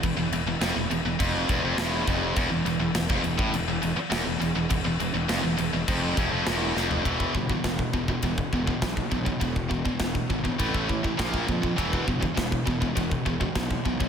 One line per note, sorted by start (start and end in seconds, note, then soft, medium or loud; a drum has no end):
0.03 0.16 E1 medium
0.03 0.16 E2 medium
0.03 kick medium
0.03 crash medium
0.17 0.31 E1 medium
0.17 0.32 E2 medium
0.31 0.45 E1 medium
0.31 0.46 E2 medium
0.31 crash medium
0.46 0.60 E1 medium
0.46 0.61 E2 medium
0.61 0.75 F1 medium
0.61 0.75 F2 loud
0.61 snare loud
0.61 crash medium
0.76 0.90 E1 medium
0.76 0.90 E2 medium
0.90 1.04 E1 medium
0.90 1.05 E2 medium
0.90 crash medium
1.05 1.19 E1 medium
1.05 1.19 E2 medium
1.19 1.47 F1 loud
1.19 1.48 F2 medium
1.19 kick loud
1.19 crash medium
1.49 1.62 E1 loud
1.49 1.63 E2 loud
1.49 kick loud
1.49 crash medium
1.63 1.77 F1 loud
1.63 1.78 F2 medium
1.77 2.05 E1 medium
1.77 2.07 E2 loud
1.77 snare loud
1.77 crash medium
2.07 2.35 F1 medium
2.07 2.36 F2 loud
2.07 kick medium
2.07 crash medium
2.36 2.50 E1 medium
2.36 2.49 E2 loud
2.36 kick loud
2.36 crash medium
2.51 2.65 E1 medium
2.51 2.64 E2 medium
2.65 2.79 E1 medium
2.65 2.78 E2 medium
2.65 crash medium
2.80 2.94 E1 medium
2.80 2.94 E2 medium
2.95 3.09 E1 medium
2.95 3.09 E2 medium
2.95 snare loud
2.95 crash medium
3.09 3.23 F1 loud
3.09 3.23 F2 loud
3.09 kick loud
3.24 3.38 E1 medium
3.24 3.39 E2 medium
3.24 crash medium
3.38 3.53 A1 loud
3.38 3.52 A2 loud
3.38 kick loud
3.53 3.67 E1 medium
3.53 3.67 E2 medium
3.53 crash medium
3.68 3.82 E1 medium
3.68 3.81 E2 medium
3.82 3.96 E1 medium
3.82 3.95 E2 medium
3.82 crash medium
3.96 muted distorted electric guitar stroke medium
3.96 muted fingered electric bass stroke soft
4.10 4.25 E1 medium
4.10 4.24 E2 loud
4.10 snare loud
4.10 crash medium
4.25 4.40 E1 medium
4.25 4.39 E2 medium
4.40 4.55 E1 medium
4.40 4.55 E2 medium
4.40 crash medium
4.56 4.70 E1 medium
4.56 4.69 E2 medium
4.70 4.84 E1 medium
4.70 4.84 E2 medium
4.70 kick medium
4.70 crash medium
4.85 4.99 E1 medium
4.85 4.99 E2 medium
5.00 5.14 E1 medium
5.00 5.13 E2 medium
5.00 crash medium
5.14 5.29 E1 medium
5.14 5.28 E2 medium
5.29 5.43 F1 loud
5.29 5.43 F2 loud
5.29 snare loud
5.29 crash medium
5.43 5.58 E1 medium
5.43 5.57 E2 medium
5.58 5.73 E1 medium
5.58 5.72 E2 medium
5.58 crash medium
5.73 5.88 E1 medium
5.73 5.88 E2 medium
5.88 6.16 F1 loud
5.88 6.17 F2 loud
5.88 kick loud
5.88 crash medium
6.17 6.31 E1 medium
6.17 6.31 E2 loud
6.17 kick medium
6.17 crash medium
6.33 6.46 F1 medium
6.33 6.46 F2 medium
6.47 6.74 E1 loud
6.47 6.76 E2 loud
6.47 snare loud
6.47 crash medium
6.76 7.04 F1 medium
6.76 7.05 F2 loud
6.76 snare medium
6.91 floor tom medium
7.05 7.25 E1 medium
7.05 7.33 E2 medium
7.05 7.33 B2 medium
7.05 7.33 E3 medium
7.05 kick medium
7.05 ride bell medium
7.20 kick medium
7.35 7.55 G1 medium
7.35 7.49 E2 medium
7.35 7.49 B2 medium
7.35 kick medium
7.50 7.63 E2 medium
7.50 7.64 B2 medium
7.50 kick medium
7.64 7.84 E1 medium
7.64 7.91 E2 medium
7.64 7.91 B2 medium
7.64 kick medium
7.64 snare loud
7.64 ride bell medium
7.79 kick medium
7.93 8.13 E1 medium
7.93 8.08 E2 medium
7.93 8.07 B2 medium
7.93 kick medium
8.08 8.22 E2 medium
8.08 8.23 B2 medium
8.08 kick medium
8.22 8.43 E1 loud
8.22 8.50 E2 medium
8.22 8.50 B2 medium
8.22 kick medium
8.22 ride bell medium
8.38 kick medium
8.53 8.72 E1 medium
8.53 8.66 E2 medium
8.53 8.66 B2 medium
8.53 kick medium
8.67 8.81 E2 medium
8.67 8.81 B2 medium
8.67 kick medium
8.82 9.02 B1 medium
8.82 9.09 E2 medium
8.82 9.09 B2 medium
8.82 kick medium
8.82 snare loud
8.82 ride bell medium
8.97 kick medium
9.11 9.31 B1 medium
9.11 9.24 E2 medium
9.11 9.24 B2 medium
9.11 kick medium
9.25 9.39 E2 medium
9.25 9.39 B2 medium
9.25 kick medium
9.40 9.81 E1 medium
9.40 9.67 E2 medium
9.40 9.68 B2 medium
9.40 kick medium
9.40 ride bell medium
9.56 kick medium
9.70 9.85 E2 medium
9.70 9.84 B2 medium
9.70 kick medium
9.85 9.99 E2 medium
9.85 9.99 B2 medium
9.85 kick medium
10.00 10.20 E1 medium
10.00 10.27 E2 medium
10.00 10.27 B2 medium
10.00 kick medium
10.00 snare loud
10.00 ride bell medium
10.15 kick medium
10.30 10.50 G#1 medium
10.30 10.43 E2 medium
10.30 10.43 B2 medium
10.30 kick medium
10.44 10.59 E2 medium
10.44 10.58 B2 medium
10.44 kick medium
10.59 10.99 A1 medium
10.59 10.87 A2 medium
10.59 10.87 E3 medium
10.59 10.87 A3 medium
10.59 kick medium
10.59 ride bell medium
10.74 kick medium
10.88 11.02 A2 medium
10.88 11.02 E3 medium
10.88 kick medium
11.03 11.17 A2 medium
11.03 11.17 E3 medium
11.03 kick medium
11.17 11.39 A#1 medium
11.17 11.46 A#2 medium
11.17 11.46 F3 medium
11.17 11.46 A#3 medium
11.17 kick medium
11.17 snare loud
11.17 ride bell medium
11.34 kick medium
11.47 11.68 F2 medium
11.47 11.61 A#2 medium
11.47 11.61 F3 medium
11.47 kick medium
11.62 11.77 A#2 medium
11.62 11.77 F3 medium
11.62 kick medium
11.77 11.98 E1 medium
11.77 12.05 E2 medium
11.77 12.05 B2 medium
11.77 12.05 E3 loud
11.77 kick medium
11.77 ride bell medium
11.93 kick medium
12.07 12.27 G1 medium
12.07 12.20 E2 medium
12.07 12.20 B2 medium
12.07 kick medium
12.21 12.35 E2 medium
12.21 12.35 B2 medium
12.21 kick medium
12.36 12.57 E1 medium
12.36 12.63 E2 medium
12.36 12.63 B2 medium
12.36 kick medium
12.36 snare loud
12.36 ride bell medium
12.52 kick medium
12.66 12.87 E1 medium
12.66 12.80 E2 medium
12.66 12.80 B2 medium
12.66 kick medium
12.81 12.94 E2 medium
12.81 12.95 B2 medium
12.81 kick medium
12.95 13.16 E1 medium
12.95 13.23 E2 medium
12.95 13.23 B2 medium
12.95 kick medium
12.95 ride bell medium
13.11 kick medium
13.25 13.46 E1 medium
13.25 13.40 E2 medium
13.25 13.39 B2 medium
13.25 kick medium
13.40 13.55 E2 medium
13.40 13.55 B2 medium
13.40 kick medium
13.55 13.75 B1 medium
13.55 13.82 E2 medium
13.55 13.82 B2 medium
13.55 kick medium
13.55 snare loud
13.55 ride bell medium
13.71 kick medium
13.85 14.05 B1 medium
13.85 13.99 E2 medium
13.85 13.99 B2 medium
13.85 kick medium
14.00 14.09 E2 medium
14.00 14.09 B2 medium
14.00 kick medium